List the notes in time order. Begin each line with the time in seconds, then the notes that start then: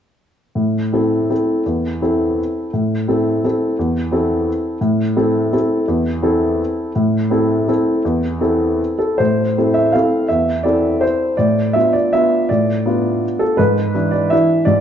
0.55 A2
0.92 C4 E4 A4
1.30 C4 E4 A4
1.66 E2
2.02 C4 E4 A4
2.73 A2
3.08 C4 E4 A4
3.44 C4 E4 A4
3.79 E2
4.12 C4 E4 A4
4.81 A2
5.16 C4 E4 A4
5.53 C4 E4 A4
5.88 E2
6.23 C4 E4 A4
6.95 A2
7.30 C4 E4 A4
7.68 C4 E4 A4
8.05 E2
8.41 C4 E4 A4
8.99 A4
9.18 A2 C5
9.58 C4 E4 A4
9.74 E5
9.92 C4 E4 A4 F5
10.28 E2 E5
10.63 C4 E4 A4 D5
11.01 C5
11.37 A2 D5
11.73 B3 D4 F4 E5
11.93 D5
12.13 B3 D4 F4 E5
12.49 A2 D5
12.86 B3 D4 F4
13.39 A4
13.57 G#2 B4
13.94 E3 D4 E4
14.11 D5
14.30 E3 D4 E4 E5
14.65 G#2 D5